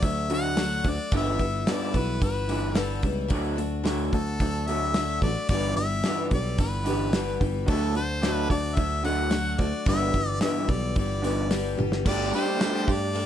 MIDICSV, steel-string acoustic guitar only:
0, 0, Header, 1, 2, 480
1, 0, Start_track
1, 0, Tempo, 546946
1, 989, Time_signature, 4, 2, 24, 8
1, 11636, End_track
2, 0, Start_track
2, 0, Title_t, "Steel-string acoustic guitar"
2, 0, Program_c, 0, 25
2, 7, Note_on_c, 0, 54, 61
2, 15, Note_on_c, 0, 57, 55
2, 19, Note_on_c, 0, 62, 62
2, 28, Note_on_c, 0, 66, 62
2, 251, Note_off_c, 0, 66, 0
2, 258, Note_off_c, 0, 54, 0
2, 261, Note_on_c, 0, 66, 55
2, 262, Note_off_c, 0, 57, 0
2, 264, Note_off_c, 0, 62, 0
2, 273, Note_on_c, 0, 62, 52
2, 283, Note_on_c, 0, 57, 46
2, 496, Note_off_c, 0, 57, 0
2, 497, Note_on_c, 0, 50, 67
2, 501, Note_off_c, 0, 66, 0
2, 501, Note_on_c, 0, 54, 81
2, 503, Note_off_c, 0, 62, 0
2, 507, Note_on_c, 0, 57, 70
2, 512, Note_on_c, 0, 66, 84
2, 514, Note_on_c, 0, 62, 70
2, 740, Note_off_c, 0, 66, 0
2, 743, Note_off_c, 0, 50, 0
2, 745, Note_off_c, 0, 54, 0
2, 747, Note_off_c, 0, 62, 0
2, 748, Note_off_c, 0, 57, 0
2, 750, Note_on_c, 0, 66, 56
2, 757, Note_on_c, 0, 62, 51
2, 768, Note_on_c, 0, 57, 46
2, 981, Note_on_c, 0, 50, 83
2, 984, Note_on_c, 0, 52, 74
2, 986, Note_on_c, 0, 43, 70
2, 988, Note_off_c, 0, 62, 0
2, 990, Note_off_c, 0, 66, 0
2, 991, Note_on_c, 0, 59, 76
2, 992, Note_off_c, 0, 57, 0
2, 995, Note_on_c, 0, 55, 84
2, 995, Note_on_c, 0, 64, 83
2, 1212, Note_off_c, 0, 64, 0
2, 1221, Note_off_c, 0, 59, 0
2, 1223, Note_on_c, 0, 64, 50
2, 1225, Note_off_c, 0, 50, 0
2, 1226, Note_off_c, 0, 52, 0
2, 1227, Note_off_c, 0, 43, 0
2, 1230, Note_off_c, 0, 55, 0
2, 1232, Note_on_c, 0, 59, 49
2, 1240, Note_on_c, 0, 55, 44
2, 1248, Note_on_c, 0, 52, 42
2, 1455, Note_off_c, 0, 52, 0
2, 1459, Note_on_c, 0, 43, 59
2, 1462, Note_off_c, 0, 55, 0
2, 1465, Note_on_c, 0, 52, 71
2, 1466, Note_off_c, 0, 64, 0
2, 1466, Note_on_c, 0, 50, 67
2, 1467, Note_off_c, 0, 59, 0
2, 1472, Note_on_c, 0, 55, 65
2, 1478, Note_on_c, 0, 59, 74
2, 1483, Note_on_c, 0, 64, 76
2, 1692, Note_off_c, 0, 64, 0
2, 1700, Note_off_c, 0, 59, 0
2, 1702, Note_on_c, 0, 64, 55
2, 1703, Note_off_c, 0, 43, 0
2, 1706, Note_off_c, 0, 55, 0
2, 1707, Note_off_c, 0, 50, 0
2, 1707, Note_off_c, 0, 52, 0
2, 1710, Note_on_c, 0, 59, 42
2, 1716, Note_on_c, 0, 55, 42
2, 1726, Note_on_c, 0, 52, 42
2, 1923, Note_off_c, 0, 52, 0
2, 1932, Note_off_c, 0, 55, 0
2, 1933, Note_on_c, 0, 52, 53
2, 1940, Note_off_c, 0, 59, 0
2, 1942, Note_off_c, 0, 64, 0
2, 1942, Note_on_c, 0, 55, 57
2, 1951, Note_on_c, 0, 59, 62
2, 1953, Note_on_c, 0, 64, 66
2, 2164, Note_off_c, 0, 64, 0
2, 2174, Note_off_c, 0, 59, 0
2, 2175, Note_off_c, 0, 55, 0
2, 2175, Note_on_c, 0, 64, 47
2, 2181, Note_off_c, 0, 52, 0
2, 2185, Note_on_c, 0, 59, 48
2, 2186, Note_on_c, 0, 55, 44
2, 2193, Note_on_c, 0, 52, 41
2, 2408, Note_off_c, 0, 55, 0
2, 2408, Note_on_c, 0, 43, 65
2, 2410, Note_off_c, 0, 52, 0
2, 2413, Note_off_c, 0, 64, 0
2, 2416, Note_on_c, 0, 50, 72
2, 2417, Note_off_c, 0, 59, 0
2, 2419, Note_on_c, 0, 55, 77
2, 2421, Note_on_c, 0, 52, 73
2, 2423, Note_on_c, 0, 64, 78
2, 2428, Note_on_c, 0, 59, 74
2, 2638, Note_off_c, 0, 64, 0
2, 2643, Note_off_c, 0, 59, 0
2, 2649, Note_off_c, 0, 55, 0
2, 2649, Note_on_c, 0, 64, 60
2, 2653, Note_off_c, 0, 52, 0
2, 2654, Note_on_c, 0, 59, 55
2, 2658, Note_off_c, 0, 43, 0
2, 2660, Note_on_c, 0, 55, 52
2, 2662, Note_off_c, 0, 50, 0
2, 2663, Note_on_c, 0, 52, 51
2, 2882, Note_on_c, 0, 50, 83
2, 2884, Note_off_c, 0, 52, 0
2, 2888, Note_on_c, 0, 54, 81
2, 2891, Note_off_c, 0, 55, 0
2, 2892, Note_off_c, 0, 59, 0
2, 2895, Note_on_c, 0, 57, 86
2, 2896, Note_on_c, 0, 62, 90
2, 2898, Note_off_c, 0, 64, 0
2, 2901, Note_on_c, 0, 66, 90
2, 3112, Note_off_c, 0, 66, 0
2, 3122, Note_on_c, 0, 66, 57
2, 3124, Note_off_c, 0, 62, 0
2, 3132, Note_off_c, 0, 57, 0
2, 3134, Note_off_c, 0, 50, 0
2, 3134, Note_on_c, 0, 62, 49
2, 3137, Note_off_c, 0, 54, 0
2, 3143, Note_on_c, 0, 57, 48
2, 3365, Note_off_c, 0, 57, 0
2, 3366, Note_on_c, 0, 54, 73
2, 3367, Note_on_c, 0, 50, 75
2, 3368, Note_off_c, 0, 62, 0
2, 3372, Note_off_c, 0, 66, 0
2, 3376, Note_on_c, 0, 57, 74
2, 3378, Note_on_c, 0, 62, 77
2, 3382, Note_on_c, 0, 66, 83
2, 3609, Note_off_c, 0, 66, 0
2, 3614, Note_off_c, 0, 62, 0
2, 3616, Note_off_c, 0, 50, 0
2, 3616, Note_off_c, 0, 54, 0
2, 3619, Note_on_c, 0, 66, 55
2, 3621, Note_off_c, 0, 57, 0
2, 3624, Note_on_c, 0, 62, 45
2, 3638, Note_on_c, 0, 57, 41
2, 3852, Note_on_c, 0, 54, 62
2, 3853, Note_off_c, 0, 62, 0
2, 3854, Note_off_c, 0, 57, 0
2, 3862, Note_off_c, 0, 66, 0
2, 3864, Note_on_c, 0, 62, 61
2, 3865, Note_on_c, 0, 57, 56
2, 3877, Note_on_c, 0, 66, 59
2, 4096, Note_off_c, 0, 66, 0
2, 4099, Note_off_c, 0, 54, 0
2, 4105, Note_off_c, 0, 57, 0
2, 4105, Note_off_c, 0, 62, 0
2, 4107, Note_on_c, 0, 66, 52
2, 4121, Note_on_c, 0, 62, 46
2, 4128, Note_on_c, 0, 57, 42
2, 4335, Note_off_c, 0, 57, 0
2, 4340, Note_on_c, 0, 50, 68
2, 4342, Note_off_c, 0, 66, 0
2, 4345, Note_on_c, 0, 54, 77
2, 4346, Note_on_c, 0, 57, 79
2, 4347, Note_off_c, 0, 62, 0
2, 4352, Note_on_c, 0, 66, 80
2, 4358, Note_on_c, 0, 62, 76
2, 4565, Note_off_c, 0, 66, 0
2, 4576, Note_on_c, 0, 66, 53
2, 4583, Note_off_c, 0, 50, 0
2, 4585, Note_off_c, 0, 54, 0
2, 4585, Note_off_c, 0, 57, 0
2, 4585, Note_off_c, 0, 62, 0
2, 4595, Note_on_c, 0, 62, 51
2, 4605, Note_on_c, 0, 57, 47
2, 4820, Note_off_c, 0, 66, 0
2, 4821, Note_on_c, 0, 43, 71
2, 4826, Note_on_c, 0, 50, 75
2, 4827, Note_on_c, 0, 52, 74
2, 4828, Note_off_c, 0, 62, 0
2, 4829, Note_off_c, 0, 57, 0
2, 4831, Note_on_c, 0, 59, 82
2, 4832, Note_on_c, 0, 55, 73
2, 4836, Note_on_c, 0, 67, 86
2, 5062, Note_off_c, 0, 67, 0
2, 5063, Note_off_c, 0, 43, 0
2, 5065, Note_off_c, 0, 50, 0
2, 5066, Note_off_c, 0, 52, 0
2, 5068, Note_off_c, 0, 55, 0
2, 5068, Note_off_c, 0, 59, 0
2, 5073, Note_on_c, 0, 67, 51
2, 5081, Note_on_c, 0, 59, 44
2, 5087, Note_on_c, 0, 55, 46
2, 5094, Note_on_c, 0, 52, 46
2, 5300, Note_off_c, 0, 59, 0
2, 5304, Note_on_c, 0, 43, 70
2, 5305, Note_off_c, 0, 52, 0
2, 5305, Note_off_c, 0, 55, 0
2, 5309, Note_off_c, 0, 67, 0
2, 5310, Note_on_c, 0, 50, 76
2, 5311, Note_on_c, 0, 59, 76
2, 5315, Note_on_c, 0, 52, 73
2, 5315, Note_on_c, 0, 55, 75
2, 5318, Note_on_c, 0, 67, 85
2, 5524, Note_off_c, 0, 67, 0
2, 5530, Note_off_c, 0, 59, 0
2, 5535, Note_on_c, 0, 67, 47
2, 5541, Note_on_c, 0, 59, 48
2, 5544, Note_off_c, 0, 43, 0
2, 5547, Note_off_c, 0, 50, 0
2, 5547, Note_off_c, 0, 55, 0
2, 5550, Note_off_c, 0, 52, 0
2, 5557, Note_on_c, 0, 55, 42
2, 5558, Note_on_c, 0, 52, 40
2, 5764, Note_off_c, 0, 52, 0
2, 5773, Note_off_c, 0, 55, 0
2, 5775, Note_on_c, 0, 52, 54
2, 5780, Note_off_c, 0, 67, 0
2, 5782, Note_off_c, 0, 59, 0
2, 5784, Note_on_c, 0, 55, 57
2, 5791, Note_on_c, 0, 59, 64
2, 5795, Note_on_c, 0, 67, 60
2, 6012, Note_off_c, 0, 67, 0
2, 6019, Note_off_c, 0, 52, 0
2, 6022, Note_off_c, 0, 59, 0
2, 6023, Note_on_c, 0, 67, 52
2, 6024, Note_off_c, 0, 55, 0
2, 6033, Note_on_c, 0, 59, 51
2, 6041, Note_on_c, 0, 55, 50
2, 6048, Note_on_c, 0, 52, 46
2, 6260, Note_off_c, 0, 52, 0
2, 6262, Note_off_c, 0, 55, 0
2, 6263, Note_on_c, 0, 43, 76
2, 6264, Note_off_c, 0, 67, 0
2, 6268, Note_off_c, 0, 59, 0
2, 6271, Note_on_c, 0, 52, 82
2, 6272, Note_on_c, 0, 50, 74
2, 6272, Note_on_c, 0, 55, 71
2, 6278, Note_on_c, 0, 59, 88
2, 6284, Note_on_c, 0, 67, 84
2, 6487, Note_off_c, 0, 67, 0
2, 6498, Note_on_c, 0, 67, 59
2, 6504, Note_off_c, 0, 43, 0
2, 6504, Note_off_c, 0, 59, 0
2, 6507, Note_off_c, 0, 52, 0
2, 6508, Note_off_c, 0, 50, 0
2, 6508, Note_off_c, 0, 55, 0
2, 6514, Note_on_c, 0, 59, 57
2, 6519, Note_on_c, 0, 55, 50
2, 6525, Note_on_c, 0, 52, 53
2, 6741, Note_off_c, 0, 67, 0
2, 6749, Note_off_c, 0, 59, 0
2, 6750, Note_on_c, 0, 50, 84
2, 6751, Note_off_c, 0, 55, 0
2, 6755, Note_off_c, 0, 52, 0
2, 6755, Note_on_c, 0, 57, 81
2, 6760, Note_on_c, 0, 54, 75
2, 6763, Note_on_c, 0, 62, 88
2, 6763, Note_on_c, 0, 66, 83
2, 6979, Note_off_c, 0, 66, 0
2, 6988, Note_off_c, 0, 50, 0
2, 6989, Note_on_c, 0, 66, 50
2, 6990, Note_off_c, 0, 57, 0
2, 6992, Note_off_c, 0, 54, 0
2, 6994, Note_off_c, 0, 62, 0
2, 7003, Note_on_c, 0, 62, 47
2, 7014, Note_on_c, 0, 57, 44
2, 7221, Note_off_c, 0, 57, 0
2, 7222, Note_off_c, 0, 62, 0
2, 7222, Note_on_c, 0, 50, 70
2, 7227, Note_off_c, 0, 66, 0
2, 7227, Note_on_c, 0, 54, 67
2, 7232, Note_on_c, 0, 57, 74
2, 7232, Note_on_c, 0, 62, 78
2, 7242, Note_on_c, 0, 66, 76
2, 7445, Note_off_c, 0, 66, 0
2, 7455, Note_on_c, 0, 66, 48
2, 7458, Note_off_c, 0, 62, 0
2, 7463, Note_off_c, 0, 50, 0
2, 7466, Note_off_c, 0, 54, 0
2, 7468, Note_off_c, 0, 57, 0
2, 7468, Note_on_c, 0, 62, 40
2, 7482, Note_on_c, 0, 57, 44
2, 7680, Note_off_c, 0, 57, 0
2, 7688, Note_on_c, 0, 54, 52
2, 7690, Note_off_c, 0, 62, 0
2, 7690, Note_on_c, 0, 57, 57
2, 7697, Note_off_c, 0, 66, 0
2, 7701, Note_on_c, 0, 62, 58
2, 7708, Note_on_c, 0, 66, 64
2, 7913, Note_off_c, 0, 66, 0
2, 7924, Note_on_c, 0, 66, 55
2, 7929, Note_off_c, 0, 62, 0
2, 7937, Note_off_c, 0, 54, 0
2, 7938, Note_off_c, 0, 57, 0
2, 7940, Note_on_c, 0, 62, 50
2, 7947, Note_on_c, 0, 57, 44
2, 8158, Note_off_c, 0, 57, 0
2, 8158, Note_on_c, 0, 50, 70
2, 8162, Note_off_c, 0, 62, 0
2, 8166, Note_on_c, 0, 54, 78
2, 8167, Note_off_c, 0, 66, 0
2, 8169, Note_on_c, 0, 57, 75
2, 8173, Note_on_c, 0, 62, 75
2, 8177, Note_on_c, 0, 66, 72
2, 8397, Note_off_c, 0, 66, 0
2, 8407, Note_on_c, 0, 66, 53
2, 8409, Note_off_c, 0, 62, 0
2, 8412, Note_off_c, 0, 50, 0
2, 8416, Note_off_c, 0, 54, 0
2, 8418, Note_off_c, 0, 57, 0
2, 8420, Note_on_c, 0, 62, 50
2, 8431, Note_on_c, 0, 57, 50
2, 8649, Note_on_c, 0, 43, 76
2, 8653, Note_off_c, 0, 57, 0
2, 8656, Note_on_c, 0, 50, 80
2, 8657, Note_off_c, 0, 66, 0
2, 8657, Note_on_c, 0, 55, 81
2, 8658, Note_on_c, 0, 52, 75
2, 8662, Note_off_c, 0, 62, 0
2, 8665, Note_on_c, 0, 67, 82
2, 8666, Note_on_c, 0, 59, 89
2, 8889, Note_off_c, 0, 67, 0
2, 8898, Note_off_c, 0, 43, 0
2, 8898, Note_off_c, 0, 59, 0
2, 8899, Note_off_c, 0, 55, 0
2, 8899, Note_on_c, 0, 67, 49
2, 8902, Note_off_c, 0, 50, 0
2, 8903, Note_off_c, 0, 52, 0
2, 8908, Note_on_c, 0, 59, 48
2, 8909, Note_on_c, 0, 55, 42
2, 8921, Note_on_c, 0, 52, 42
2, 9132, Note_off_c, 0, 52, 0
2, 9132, Note_on_c, 0, 43, 67
2, 9134, Note_off_c, 0, 59, 0
2, 9135, Note_on_c, 0, 50, 67
2, 9136, Note_off_c, 0, 55, 0
2, 9142, Note_on_c, 0, 52, 67
2, 9143, Note_off_c, 0, 67, 0
2, 9144, Note_on_c, 0, 59, 74
2, 9146, Note_on_c, 0, 55, 66
2, 9154, Note_on_c, 0, 67, 73
2, 9370, Note_off_c, 0, 67, 0
2, 9375, Note_off_c, 0, 59, 0
2, 9380, Note_off_c, 0, 43, 0
2, 9381, Note_off_c, 0, 50, 0
2, 9381, Note_on_c, 0, 67, 45
2, 9384, Note_off_c, 0, 55, 0
2, 9385, Note_off_c, 0, 52, 0
2, 9385, Note_on_c, 0, 59, 49
2, 9395, Note_on_c, 0, 55, 41
2, 9400, Note_on_c, 0, 52, 45
2, 9603, Note_off_c, 0, 52, 0
2, 9614, Note_on_c, 0, 52, 55
2, 9618, Note_off_c, 0, 55, 0
2, 9624, Note_off_c, 0, 67, 0
2, 9626, Note_off_c, 0, 59, 0
2, 9629, Note_on_c, 0, 55, 60
2, 9636, Note_on_c, 0, 59, 58
2, 9643, Note_on_c, 0, 67, 63
2, 9854, Note_off_c, 0, 67, 0
2, 9860, Note_off_c, 0, 59, 0
2, 9861, Note_off_c, 0, 52, 0
2, 9864, Note_on_c, 0, 67, 49
2, 9868, Note_off_c, 0, 55, 0
2, 9870, Note_on_c, 0, 59, 48
2, 9884, Note_on_c, 0, 55, 44
2, 9890, Note_on_c, 0, 52, 42
2, 10095, Note_off_c, 0, 52, 0
2, 10098, Note_off_c, 0, 55, 0
2, 10100, Note_on_c, 0, 50, 74
2, 10103, Note_off_c, 0, 59, 0
2, 10103, Note_on_c, 0, 43, 74
2, 10105, Note_on_c, 0, 52, 75
2, 10106, Note_off_c, 0, 67, 0
2, 10109, Note_on_c, 0, 55, 81
2, 10114, Note_on_c, 0, 59, 77
2, 10117, Note_on_c, 0, 67, 79
2, 10322, Note_off_c, 0, 67, 0
2, 10331, Note_off_c, 0, 59, 0
2, 10333, Note_on_c, 0, 67, 56
2, 10340, Note_off_c, 0, 55, 0
2, 10342, Note_off_c, 0, 52, 0
2, 10342, Note_on_c, 0, 59, 58
2, 10343, Note_off_c, 0, 50, 0
2, 10345, Note_off_c, 0, 43, 0
2, 10351, Note_on_c, 0, 55, 53
2, 10352, Note_on_c, 0, 52, 49
2, 10574, Note_off_c, 0, 55, 0
2, 10580, Note_off_c, 0, 67, 0
2, 10581, Note_off_c, 0, 52, 0
2, 10584, Note_off_c, 0, 59, 0
2, 10584, Note_on_c, 0, 55, 83
2, 10587, Note_on_c, 0, 57, 80
2, 10597, Note_on_c, 0, 62, 87
2, 10600, Note_on_c, 0, 67, 82
2, 10812, Note_off_c, 0, 67, 0
2, 10822, Note_off_c, 0, 62, 0
2, 10823, Note_on_c, 0, 67, 55
2, 10826, Note_off_c, 0, 55, 0
2, 10827, Note_off_c, 0, 57, 0
2, 10833, Note_on_c, 0, 62, 50
2, 10842, Note_on_c, 0, 57, 46
2, 11064, Note_off_c, 0, 57, 0
2, 11065, Note_off_c, 0, 67, 0
2, 11067, Note_on_c, 0, 55, 62
2, 11070, Note_off_c, 0, 62, 0
2, 11074, Note_on_c, 0, 57, 58
2, 11080, Note_on_c, 0, 62, 63
2, 11086, Note_on_c, 0, 67, 66
2, 11281, Note_off_c, 0, 67, 0
2, 11292, Note_on_c, 0, 67, 53
2, 11295, Note_off_c, 0, 62, 0
2, 11301, Note_off_c, 0, 57, 0
2, 11305, Note_on_c, 0, 62, 46
2, 11307, Note_off_c, 0, 55, 0
2, 11311, Note_on_c, 0, 57, 43
2, 11524, Note_on_c, 0, 55, 74
2, 11526, Note_off_c, 0, 57, 0
2, 11526, Note_off_c, 0, 62, 0
2, 11536, Note_off_c, 0, 67, 0
2, 11537, Note_on_c, 0, 57, 80
2, 11537, Note_on_c, 0, 62, 81
2, 11546, Note_on_c, 0, 67, 86
2, 11636, Note_off_c, 0, 55, 0
2, 11636, Note_off_c, 0, 57, 0
2, 11636, Note_off_c, 0, 62, 0
2, 11636, Note_off_c, 0, 67, 0
2, 11636, End_track
0, 0, End_of_file